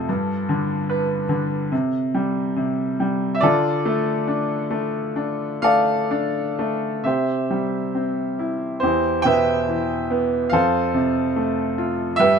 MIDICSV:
0, 0, Header, 1, 2, 480
1, 0, Start_track
1, 0, Tempo, 820793
1, 46, Time_signature, 4, 2, 24, 8
1, 1006, Tempo, 853485
1, 2446, Tempo, 884956
1, 2926, Tempo, 941915
1, 3886, Tempo, 899550
1, 4366, Tempo, 867052
1, 5326, Tempo, 837989
1, 6876, End_track
2, 0, Start_track
2, 0, Title_t, "Grand piano"
2, 0, Program_c, 0, 0
2, 0, Control_c, 0, 64, 127
2, 0, Note_on_c, 0, 60, 57
2, 0, Note_on_c, 0, 65, 58
2, 0, Note_on_c, 0, 69, 81
2, 51, Note_on_c, 0, 43, 54
2, 53, Control_c, 0, 64, 0
2, 169, Control_c, 0, 64, 127
2, 287, Note_on_c, 0, 50, 52
2, 523, Note_on_c, 0, 71, 53
2, 745, Note_off_c, 0, 50, 0
2, 754, Note_on_c, 0, 50, 47
2, 985, Note_off_c, 0, 43, 0
2, 993, Note_off_c, 0, 71, 0
2, 996, Note_off_c, 0, 50, 0
2, 1004, Note_on_c, 0, 48, 60
2, 1014, Control_c, 0, 64, 0
2, 1101, Control_c, 0, 64, 127
2, 1244, Note_on_c, 0, 55, 52
2, 1472, Note_off_c, 0, 48, 0
2, 1480, Note_on_c, 0, 48, 57
2, 1716, Note_off_c, 0, 55, 0
2, 1725, Note_on_c, 0, 55, 50
2, 1905, Note_off_c, 0, 60, 0
2, 1905, Note_off_c, 0, 65, 0
2, 1920, Note_on_c, 0, 76, 69
2, 1950, Note_off_c, 0, 48, 0
2, 1954, Note_on_c, 0, 74, 80
2, 1959, Note_off_c, 0, 55, 0
2, 1961, Note_off_c, 0, 69, 0
2, 1963, Note_off_c, 0, 76, 0
2, 1965, Note_on_c, 0, 50, 59
2, 1970, Note_on_c, 0, 65, 58
2, 1970, Note_on_c, 0, 69, 60
2, 1974, Control_c, 0, 64, 0
2, 2084, Control_c, 0, 64, 127
2, 2206, Note_on_c, 0, 57, 57
2, 2442, Note_on_c, 0, 62, 51
2, 2668, Note_off_c, 0, 57, 0
2, 2676, Note_on_c, 0, 57, 53
2, 2915, Note_off_c, 0, 62, 0
2, 2923, Note_on_c, 0, 62, 54
2, 3152, Note_off_c, 0, 57, 0
2, 3158, Note_on_c, 0, 77, 96
2, 3160, Note_on_c, 0, 57, 49
2, 3161, Note_off_c, 0, 69, 0
2, 3161, Note_off_c, 0, 74, 0
2, 3169, Note_on_c, 0, 69, 57
2, 3169, Note_on_c, 0, 74, 65
2, 3391, Note_off_c, 0, 65, 0
2, 3399, Note_off_c, 0, 62, 0
2, 3407, Note_on_c, 0, 62, 57
2, 3643, Note_off_c, 0, 57, 0
2, 3651, Note_on_c, 0, 57, 53
2, 3866, Note_off_c, 0, 50, 0
2, 3869, Note_off_c, 0, 69, 0
2, 3869, Note_off_c, 0, 74, 0
2, 3871, Note_off_c, 0, 62, 0
2, 3879, Note_off_c, 0, 57, 0
2, 3880, Note_on_c, 0, 76, 58
2, 3881, Note_on_c, 0, 48, 46
2, 3893, Note_on_c, 0, 67, 48
2, 3893, Note_on_c, 0, 72, 41
2, 3894, Control_c, 0, 64, 0
2, 3907, Note_off_c, 0, 77, 0
2, 3990, Control_c, 0, 64, 127
2, 4129, Note_on_c, 0, 55, 42
2, 4365, Note_on_c, 0, 60, 40
2, 4611, Note_on_c, 0, 64, 45
2, 4828, Note_off_c, 0, 48, 0
2, 4828, Note_off_c, 0, 72, 0
2, 4832, Note_off_c, 0, 55, 0
2, 4834, Note_off_c, 0, 67, 0
2, 4836, Note_on_c, 0, 72, 70
2, 4837, Note_off_c, 0, 60, 0
2, 4845, Note_off_c, 0, 64, 0
2, 4853, Note_on_c, 0, 40, 50
2, 4855, Note_on_c, 0, 67, 46
2, 4856, Note_on_c, 0, 64, 46
2, 4860, Control_c, 0, 64, 0
2, 4879, Note_off_c, 0, 76, 0
2, 4944, Control_c, 0, 64, 127
2, 5071, Note_on_c, 0, 79, 98
2, 5087, Note_on_c, 0, 47, 45
2, 5089, Note_off_c, 0, 72, 0
2, 5091, Note_on_c, 0, 71, 56
2, 5091, Note_on_c, 0, 76, 62
2, 5328, Note_on_c, 0, 52, 49
2, 5568, Note_on_c, 0, 59, 53
2, 5786, Note_off_c, 0, 47, 0
2, 5787, Note_off_c, 0, 40, 0
2, 5787, Note_off_c, 0, 76, 0
2, 5788, Note_off_c, 0, 64, 0
2, 5788, Note_off_c, 0, 67, 0
2, 5788, Note_off_c, 0, 71, 0
2, 5791, Note_on_c, 0, 77, 83
2, 5796, Note_off_c, 0, 52, 0
2, 5801, Note_off_c, 0, 59, 0
2, 5808, Note_on_c, 0, 41, 54
2, 5811, Note_on_c, 0, 69, 61
2, 5811, Note_on_c, 0, 72, 59
2, 5817, Control_c, 0, 64, 0
2, 5822, Note_off_c, 0, 79, 0
2, 5931, Control_c, 0, 64, 127
2, 6046, Note_on_c, 0, 48, 55
2, 6288, Note_on_c, 0, 57, 49
2, 6528, Note_on_c, 0, 65, 56
2, 6735, Note_off_c, 0, 77, 0
2, 6743, Note_off_c, 0, 41, 0
2, 6744, Note_off_c, 0, 48, 0
2, 6745, Note_off_c, 0, 69, 0
2, 6745, Note_off_c, 0, 72, 0
2, 6745, Note_on_c, 0, 76, 93
2, 6752, Note_off_c, 0, 57, 0
2, 6760, Note_off_c, 0, 65, 0
2, 6762, Note_on_c, 0, 43, 62
2, 6768, Note_on_c, 0, 67, 61
2, 6769, Note_on_c, 0, 71, 61
2, 6775, Control_c, 0, 64, 0
2, 6876, Note_off_c, 0, 43, 0
2, 6876, Note_off_c, 0, 67, 0
2, 6876, Note_off_c, 0, 71, 0
2, 6876, Note_off_c, 0, 76, 0
2, 6876, End_track
0, 0, End_of_file